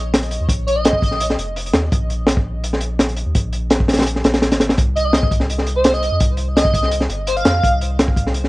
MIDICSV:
0, 0, Header, 1, 4, 480
1, 0, Start_track
1, 0, Tempo, 357143
1, 657, Time_signature, 4, 2, 24, 8
1, 11405, End_track
2, 0, Start_track
2, 0, Title_t, "Digital synth lead"
2, 0, Program_c, 0, 84
2, 897, Note_on_c, 0, 73, 93
2, 998, Note_off_c, 0, 73, 0
2, 1023, Note_on_c, 0, 75, 99
2, 1693, Note_off_c, 0, 75, 0
2, 6656, Note_on_c, 0, 75, 93
2, 6757, Note_off_c, 0, 75, 0
2, 6782, Note_on_c, 0, 75, 92
2, 7068, Note_off_c, 0, 75, 0
2, 7741, Note_on_c, 0, 72, 89
2, 7957, Note_off_c, 0, 72, 0
2, 7982, Note_on_c, 0, 75, 97
2, 8268, Note_off_c, 0, 75, 0
2, 8813, Note_on_c, 0, 75, 96
2, 9295, Note_off_c, 0, 75, 0
2, 9776, Note_on_c, 0, 72, 94
2, 9877, Note_off_c, 0, 72, 0
2, 9901, Note_on_c, 0, 77, 96
2, 10382, Note_off_c, 0, 77, 0
2, 11405, End_track
3, 0, Start_track
3, 0, Title_t, "Sub bass"
3, 0, Program_c, 1, 38
3, 0, Note_on_c, 1, 34, 97
3, 525, Note_off_c, 1, 34, 0
3, 541, Note_on_c, 1, 39, 81
3, 645, Note_off_c, 1, 39, 0
3, 653, Note_on_c, 1, 34, 97
3, 1837, Note_off_c, 1, 34, 0
3, 1854, Note_on_c, 1, 29, 85
3, 2317, Note_off_c, 1, 29, 0
3, 2335, Note_on_c, 1, 39, 89
3, 2553, Note_off_c, 1, 39, 0
3, 2582, Note_on_c, 1, 34, 98
3, 4365, Note_off_c, 1, 34, 0
3, 4379, Note_on_c, 1, 39, 78
3, 4484, Note_off_c, 1, 39, 0
3, 4502, Note_on_c, 1, 34, 98
3, 5681, Note_off_c, 1, 34, 0
3, 5696, Note_on_c, 1, 34, 91
3, 6061, Note_on_c, 1, 32, 79
3, 6081, Note_off_c, 1, 34, 0
3, 6398, Note_off_c, 1, 32, 0
3, 6423, Note_on_c, 1, 36, 95
3, 8205, Note_off_c, 1, 36, 0
3, 8222, Note_on_c, 1, 41, 81
3, 8325, Note_off_c, 1, 41, 0
3, 8342, Note_on_c, 1, 36, 98
3, 9521, Note_off_c, 1, 36, 0
3, 9536, Note_on_c, 1, 31, 84
3, 9998, Note_off_c, 1, 31, 0
3, 10015, Note_on_c, 1, 41, 86
3, 10233, Note_off_c, 1, 41, 0
3, 10262, Note_on_c, 1, 36, 98
3, 11405, Note_off_c, 1, 36, 0
3, 11405, End_track
4, 0, Start_track
4, 0, Title_t, "Drums"
4, 184, Note_on_c, 9, 42, 91
4, 185, Note_on_c, 9, 38, 113
4, 306, Note_off_c, 9, 42, 0
4, 306, Note_on_c, 9, 42, 45
4, 319, Note_off_c, 9, 38, 0
4, 416, Note_off_c, 9, 42, 0
4, 416, Note_on_c, 9, 42, 73
4, 551, Note_off_c, 9, 42, 0
4, 655, Note_on_c, 9, 36, 111
4, 660, Note_on_c, 9, 42, 90
4, 789, Note_off_c, 9, 36, 0
4, 794, Note_off_c, 9, 42, 0
4, 910, Note_on_c, 9, 42, 70
4, 1044, Note_off_c, 9, 42, 0
4, 1140, Note_on_c, 9, 42, 88
4, 1149, Note_on_c, 9, 38, 127
4, 1252, Note_on_c, 9, 36, 89
4, 1274, Note_off_c, 9, 42, 0
4, 1284, Note_off_c, 9, 38, 0
4, 1375, Note_off_c, 9, 36, 0
4, 1375, Note_on_c, 9, 36, 100
4, 1385, Note_on_c, 9, 42, 67
4, 1496, Note_on_c, 9, 38, 41
4, 1509, Note_off_c, 9, 36, 0
4, 1520, Note_off_c, 9, 42, 0
4, 1617, Note_on_c, 9, 42, 99
4, 1630, Note_off_c, 9, 38, 0
4, 1748, Note_on_c, 9, 38, 55
4, 1751, Note_off_c, 9, 42, 0
4, 1865, Note_on_c, 9, 42, 65
4, 1882, Note_off_c, 9, 38, 0
4, 1999, Note_off_c, 9, 42, 0
4, 2101, Note_on_c, 9, 42, 84
4, 2234, Note_off_c, 9, 42, 0
4, 2234, Note_on_c, 9, 42, 47
4, 2331, Note_off_c, 9, 42, 0
4, 2331, Note_on_c, 9, 42, 71
4, 2333, Note_on_c, 9, 38, 127
4, 2465, Note_off_c, 9, 42, 0
4, 2467, Note_off_c, 9, 38, 0
4, 2581, Note_on_c, 9, 42, 83
4, 2583, Note_on_c, 9, 36, 124
4, 2715, Note_off_c, 9, 42, 0
4, 2717, Note_off_c, 9, 36, 0
4, 2822, Note_on_c, 9, 42, 68
4, 2957, Note_off_c, 9, 42, 0
4, 3046, Note_on_c, 9, 38, 113
4, 3069, Note_on_c, 9, 42, 91
4, 3181, Note_off_c, 9, 38, 0
4, 3185, Note_on_c, 9, 36, 101
4, 3204, Note_off_c, 9, 42, 0
4, 3319, Note_off_c, 9, 36, 0
4, 3544, Note_on_c, 9, 42, 84
4, 3671, Note_on_c, 9, 38, 52
4, 3679, Note_off_c, 9, 42, 0
4, 3772, Note_on_c, 9, 42, 77
4, 3805, Note_off_c, 9, 38, 0
4, 3906, Note_off_c, 9, 42, 0
4, 4021, Note_on_c, 9, 38, 101
4, 4028, Note_on_c, 9, 42, 83
4, 4148, Note_off_c, 9, 42, 0
4, 4148, Note_on_c, 9, 42, 48
4, 4156, Note_off_c, 9, 38, 0
4, 4253, Note_off_c, 9, 42, 0
4, 4253, Note_on_c, 9, 42, 73
4, 4388, Note_off_c, 9, 42, 0
4, 4499, Note_on_c, 9, 42, 85
4, 4503, Note_on_c, 9, 36, 108
4, 4634, Note_off_c, 9, 42, 0
4, 4638, Note_off_c, 9, 36, 0
4, 4737, Note_on_c, 9, 42, 73
4, 4872, Note_off_c, 9, 42, 0
4, 4974, Note_on_c, 9, 42, 86
4, 4979, Note_on_c, 9, 38, 116
4, 5107, Note_on_c, 9, 36, 94
4, 5108, Note_off_c, 9, 42, 0
4, 5113, Note_off_c, 9, 38, 0
4, 5214, Note_on_c, 9, 38, 87
4, 5224, Note_on_c, 9, 42, 73
4, 5242, Note_off_c, 9, 36, 0
4, 5284, Note_off_c, 9, 38, 0
4, 5284, Note_on_c, 9, 38, 87
4, 5285, Note_off_c, 9, 42, 0
4, 5285, Note_on_c, 9, 42, 67
4, 5334, Note_off_c, 9, 42, 0
4, 5334, Note_on_c, 9, 42, 70
4, 5354, Note_off_c, 9, 38, 0
4, 5354, Note_on_c, 9, 38, 90
4, 5389, Note_off_c, 9, 38, 0
4, 5389, Note_on_c, 9, 38, 95
4, 5402, Note_off_c, 9, 42, 0
4, 5402, Note_on_c, 9, 42, 73
4, 5458, Note_off_c, 9, 42, 0
4, 5458, Note_on_c, 9, 42, 91
4, 5524, Note_off_c, 9, 38, 0
4, 5584, Note_on_c, 9, 38, 53
4, 5592, Note_off_c, 9, 42, 0
4, 5698, Note_on_c, 9, 42, 77
4, 5707, Note_off_c, 9, 38, 0
4, 5707, Note_on_c, 9, 38, 117
4, 5825, Note_off_c, 9, 42, 0
4, 5825, Note_on_c, 9, 42, 77
4, 5827, Note_off_c, 9, 38, 0
4, 5827, Note_on_c, 9, 38, 108
4, 5937, Note_off_c, 9, 38, 0
4, 5937, Note_on_c, 9, 38, 105
4, 5944, Note_off_c, 9, 42, 0
4, 5944, Note_on_c, 9, 42, 75
4, 6068, Note_off_c, 9, 42, 0
4, 6068, Note_on_c, 9, 42, 78
4, 6070, Note_off_c, 9, 38, 0
4, 6070, Note_on_c, 9, 38, 102
4, 6179, Note_off_c, 9, 38, 0
4, 6179, Note_on_c, 9, 38, 101
4, 6187, Note_off_c, 9, 42, 0
4, 6187, Note_on_c, 9, 42, 84
4, 6305, Note_off_c, 9, 38, 0
4, 6305, Note_on_c, 9, 38, 104
4, 6313, Note_off_c, 9, 42, 0
4, 6313, Note_on_c, 9, 42, 85
4, 6417, Note_off_c, 9, 42, 0
4, 6417, Note_on_c, 9, 42, 85
4, 6423, Note_on_c, 9, 36, 119
4, 6440, Note_off_c, 9, 38, 0
4, 6551, Note_off_c, 9, 42, 0
4, 6558, Note_off_c, 9, 36, 0
4, 6669, Note_on_c, 9, 42, 70
4, 6804, Note_off_c, 9, 42, 0
4, 6895, Note_on_c, 9, 38, 108
4, 6910, Note_on_c, 9, 42, 86
4, 7029, Note_off_c, 9, 38, 0
4, 7029, Note_on_c, 9, 36, 102
4, 7044, Note_off_c, 9, 42, 0
4, 7140, Note_off_c, 9, 36, 0
4, 7140, Note_on_c, 9, 36, 95
4, 7142, Note_on_c, 9, 42, 70
4, 7257, Note_on_c, 9, 38, 53
4, 7274, Note_off_c, 9, 36, 0
4, 7277, Note_off_c, 9, 42, 0
4, 7388, Note_on_c, 9, 42, 86
4, 7392, Note_off_c, 9, 38, 0
4, 7505, Note_on_c, 9, 38, 46
4, 7522, Note_off_c, 9, 42, 0
4, 7616, Note_on_c, 9, 42, 71
4, 7639, Note_off_c, 9, 38, 0
4, 7751, Note_off_c, 9, 42, 0
4, 7850, Note_on_c, 9, 42, 91
4, 7862, Note_on_c, 9, 38, 127
4, 7983, Note_off_c, 9, 42, 0
4, 7983, Note_on_c, 9, 42, 42
4, 7996, Note_off_c, 9, 38, 0
4, 8101, Note_off_c, 9, 42, 0
4, 8101, Note_on_c, 9, 42, 74
4, 8235, Note_off_c, 9, 42, 0
4, 8336, Note_on_c, 9, 42, 86
4, 8342, Note_on_c, 9, 36, 108
4, 8471, Note_off_c, 9, 42, 0
4, 8477, Note_off_c, 9, 36, 0
4, 8564, Note_on_c, 9, 42, 76
4, 8698, Note_off_c, 9, 42, 0
4, 8827, Note_on_c, 9, 38, 106
4, 8828, Note_on_c, 9, 42, 97
4, 8937, Note_on_c, 9, 36, 102
4, 8962, Note_off_c, 9, 38, 0
4, 8962, Note_off_c, 9, 42, 0
4, 9057, Note_off_c, 9, 36, 0
4, 9057, Note_on_c, 9, 36, 95
4, 9064, Note_on_c, 9, 42, 72
4, 9179, Note_on_c, 9, 38, 44
4, 9191, Note_off_c, 9, 36, 0
4, 9199, Note_off_c, 9, 42, 0
4, 9295, Note_on_c, 9, 42, 100
4, 9313, Note_off_c, 9, 38, 0
4, 9417, Note_on_c, 9, 38, 52
4, 9430, Note_off_c, 9, 42, 0
4, 9540, Note_on_c, 9, 42, 76
4, 9552, Note_off_c, 9, 38, 0
4, 9675, Note_off_c, 9, 42, 0
4, 9772, Note_on_c, 9, 42, 93
4, 9904, Note_off_c, 9, 42, 0
4, 9904, Note_on_c, 9, 42, 43
4, 10014, Note_off_c, 9, 42, 0
4, 10014, Note_on_c, 9, 42, 69
4, 10018, Note_on_c, 9, 38, 126
4, 10148, Note_off_c, 9, 42, 0
4, 10152, Note_off_c, 9, 38, 0
4, 10263, Note_on_c, 9, 36, 111
4, 10271, Note_on_c, 9, 42, 86
4, 10397, Note_off_c, 9, 36, 0
4, 10406, Note_off_c, 9, 42, 0
4, 10501, Note_on_c, 9, 42, 77
4, 10636, Note_off_c, 9, 42, 0
4, 10741, Note_on_c, 9, 42, 86
4, 10743, Note_on_c, 9, 38, 123
4, 10862, Note_on_c, 9, 36, 90
4, 10875, Note_off_c, 9, 42, 0
4, 10878, Note_off_c, 9, 38, 0
4, 10974, Note_off_c, 9, 36, 0
4, 10974, Note_on_c, 9, 36, 95
4, 10982, Note_on_c, 9, 42, 66
4, 11109, Note_off_c, 9, 36, 0
4, 11112, Note_on_c, 9, 38, 55
4, 11117, Note_off_c, 9, 42, 0
4, 11214, Note_on_c, 9, 42, 85
4, 11247, Note_off_c, 9, 38, 0
4, 11345, Note_on_c, 9, 38, 46
4, 11348, Note_off_c, 9, 42, 0
4, 11405, Note_off_c, 9, 38, 0
4, 11405, End_track
0, 0, End_of_file